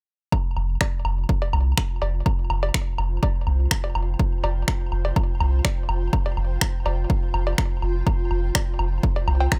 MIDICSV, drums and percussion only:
0, 0, Header, 1, 2, 480
1, 0, Start_track
1, 0, Tempo, 483871
1, 321, Time_signature, 4, 2, 24, 8
1, 9517, End_track
2, 0, Start_track
2, 0, Title_t, "Drums"
2, 321, Note_on_c, 9, 36, 104
2, 321, Note_on_c, 9, 77, 71
2, 420, Note_off_c, 9, 36, 0
2, 421, Note_off_c, 9, 77, 0
2, 561, Note_on_c, 9, 77, 39
2, 660, Note_off_c, 9, 77, 0
2, 801, Note_on_c, 9, 26, 86
2, 801, Note_on_c, 9, 36, 105
2, 801, Note_on_c, 9, 56, 60
2, 801, Note_on_c, 9, 77, 68
2, 900, Note_off_c, 9, 26, 0
2, 900, Note_off_c, 9, 36, 0
2, 900, Note_off_c, 9, 56, 0
2, 900, Note_off_c, 9, 77, 0
2, 1041, Note_on_c, 9, 77, 67
2, 1140, Note_off_c, 9, 77, 0
2, 1281, Note_on_c, 9, 36, 105
2, 1281, Note_on_c, 9, 77, 40
2, 1380, Note_off_c, 9, 36, 0
2, 1380, Note_off_c, 9, 77, 0
2, 1408, Note_on_c, 9, 56, 60
2, 1507, Note_off_c, 9, 56, 0
2, 1520, Note_on_c, 9, 77, 72
2, 1620, Note_off_c, 9, 77, 0
2, 1760, Note_on_c, 9, 77, 70
2, 1761, Note_on_c, 9, 26, 84
2, 1761, Note_on_c, 9, 36, 103
2, 1860, Note_off_c, 9, 26, 0
2, 1860, Note_off_c, 9, 36, 0
2, 1860, Note_off_c, 9, 77, 0
2, 2001, Note_on_c, 9, 56, 60
2, 2001, Note_on_c, 9, 77, 40
2, 2100, Note_off_c, 9, 56, 0
2, 2100, Note_off_c, 9, 77, 0
2, 2241, Note_on_c, 9, 36, 110
2, 2241, Note_on_c, 9, 77, 71
2, 2340, Note_off_c, 9, 36, 0
2, 2340, Note_off_c, 9, 77, 0
2, 2480, Note_on_c, 9, 77, 75
2, 2580, Note_off_c, 9, 77, 0
2, 2608, Note_on_c, 9, 56, 61
2, 2707, Note_off_c, 9, 56, 0
2, 2721, Note_on_c, 9, 26, 86
2, 2721, Note_on_c, 9, 36, 108
2, 2721, Note_on_c, 9, 77, 43
2, 2820, Note_off_c, 9, 36, 0
2, 2820, Note_off_c, 9, 77, 0
2, 2821, Note_off_c, 9, 26, 0
2, 2960, Note_on_c, 9, 77, 71
2, 3059, Note_off_c, 9, 77, 0
2, 3200, Note_on_c, 9, 56, 62
2, 3200, Note_on_c, 9, 77, 72
2, 3201, Note_on_c, 9, 36, 115
2, 3300, Note_off_c, 9, 36, 0
2, 3300, Note_off_c, 9, 56, 0
2, 3300, Note_off_c, 9, 77, 0
2, 3441, Note_on_c, 9, 77, 42
2, 3540, Note_off_c, 9, 77, 0
2, 3680, Note_on_c, 9, 77, 74
2, 3681, Note_on_c, 9, 26, 87
2, 3681, Note_on_c, 9, 36, 106
2, 3780, Note_off_c, 9, 26, 0
2, 3780, Note_off_c, 9, 36, 0
2, 3780, Note_off_c, 9, 77, 0
2, 3808, Note_on_c, 9, 56, 60
2, 3907, Note_off_c, 9, 56, 0
2, 3920, Note_on_c, 9, 77, 72
2, 4020, Note_off_c, 9, 77, 0
2, 4161, Note_on_c, 9, 36, 113
2, 4161, Note_on_c, 9, 77, 42
2, 4260, Note_off_c, 9, 36, 0
2, 4260, Note_off_c, 9, 77, 0
2, 4401, Note_on_c, 9, 56, 58
2, 4401, Note_on_c, 9, 77, 75
2, 4500, Note_off_c, 9, 56, 0
2, 4500, Note_off_c, 9, 77, 0
2, 4641, Note_on_c, 9, 26, 88
2, 4641, Note_on_c, 9, 36, 108
2, 4641, Note_on_c, 9, 77, 73
2, 4740, Note_off_c, 9, 36, 0
2, 4740, Note_off_c, 9, 77, 0
2, 4741, Note_off_c, 9, 26, 0
2, 4881, Note_on_c, 9, 77, 42
2, 4980, Note_off_c, 9, 77, 0
2, 5008, Note_on_c, 9, 56, 57
2, 5108, Note_off_c, 9, 56, 0
2, 5121, Note_on_c, 9, 36, 113
2, 5121, Note_on_c, 9, 77, 75
2, 5220, Note_off_c, 9, 36, 0
2, 5221, Note_off_c, 9, 77, 0
2, 5362, Note_on_c, 9, 77, 77
2, 5461, Note_off_c, 9, 77, 0
2, 5601, Note_on_c, 9, 26, 81
2, 5601, Note_on_c, 9, 36, 110
2, 5601, Note_on_c, 9, 56, 57
2, 5601, Note_on_c, 9, 77, 43
2, 5700, Note_off_c, 9, 26, 0
2, 5700, Note_off_c, 9, 36, 0
2, 5700, Note_off_c, 9, 56, 0
2, 5700, Note_off_c, 9, 77, 0
2, 5841, Note_on_c, 9, 77, 76
2, 5940, Note_off_c, 9, 77, 0
2, 6081, Note_on_c, 9, 36, 113
2, 6081, Note_on_c, 9, 77, 75
2, 6180, Note_off_c, 9, 36, 0
2, 6181, Note_off_c, 9, 77, 0
2, 6209, Note_on_c, 9, 56, 58
2, 6308, Note_off_c, 9, 56, 0
2, 6321, Note_on_c, 9, 77, 41
2, 6420, Note_off_c, 9, 77, 0
2, 6561, Note_on_c, 9, 26, 84
2, 6561, Note_on_c, 9, 36, 109
2, 6561, Note_on_c, 9, 77, 74
2, 6660, Note_off_c, 9, 26, 0
2, 6660, Note_off_c, 9, 36, 0
2, 6660, Note_off_c, 9, 77, 0
2, 6802, Note_on_c, 9, 56, 56
2, 6802, Note_on_c, 9, 77, 72
2, 6901, Note_off_c, 9, 56, 0
2, 6901, Note_off_c, 9, 77, 0
2, 7041, Note_on_c, 9, 36, 112
2, 7041, Note_on_c, 9, 77, 42
2, 7140, Note_off_c, 9, 36, 0
2, 7140, Note_off_c, 9, 77, 0
2, 7281, Note_on_c, 9, 77, 74
2, 7381, Note_off_c, 9, 77, 0
2, 7409, Note_on_c, 9, 56, 55
2, 7508, Note_off_c, 9, 56, 0
2, 7521, Note_on_c, 9, 26, 81
2, 7521, Note_on_c, 9, 36, 109
2, 7522, Note_on_c, 9, 77, 73
2, 7620, Note_off_c, 9, 26, 0
2, 7620, Note_off_c, 9, 36, 0
2, 7621, Note_off_c, 9, 77, 0
2, 7761, Note_on_c, 9, 77, 41
2, 7861, Note_off_c, 9, 77, 0
2, 8001, Note_on_c, 9, 36, 107
2, 8001, Note_on_c, 9, 77, 72
2, 8100, Note_off_c, 9, 36, 0
2, 8100, Note_off_c, 9, 77, 0
2, 8242, Note_on_c, 9, 77, 42
2, 8341, Note_off_c, 9, 77, 0
2, 8481, Note_on_c, 9, 26, 82
2, 8481, Note_on_c, 9, 36, 110
2, 8482, Note_on_c, 9, 56, 58
2, 8482, Note_on_c, 9, 77, 70
2, 8580, Note_off_c, 9, 26, 0
2, 8580, Note_off_c, 9, 36, 0
2, 8581, Note_off_c, 9, 56, 0
2, 8581, Note_off_c, 9, 77, 0
2, 8721, Note_on_c, 9, 77, 71
2, 8820, Note_off_c, 9, 77, 0
2, 8961, Note_on_c, 9, 36, 113
2, 8962, Note_on_c, 9, 77, 42
2, 9061, Note_off_c, 9, 36, 0
2, 9061, Note_off_c, 9, 77, 0
2, 9089, Note_on_c, 9, 56, 59
2, 9188, Note_off_c, 9, 56, 0
2, 9202, Note_on_c, 9, 77, 75
2, 9301, Note_off_c, 9, 77, 0
2, 9329, Note_on_c, 9, 56, 84
2, 9428, Note_off_c, 9, 56, 0
2, 9441, Note_on_c, 9, 26, 78
2, 9441, Note_on_c, 9, 36, 106
2, 9441, Note_on_c, 9, 77, 69
2, 9517, Note_off_c, 9, 26, 0
2, 9517, Note_off_c, 9, 36, 0
2, 9517, Note_off_c, 9, 77, 0
2, 9517, End_track
0, 0, End_of_file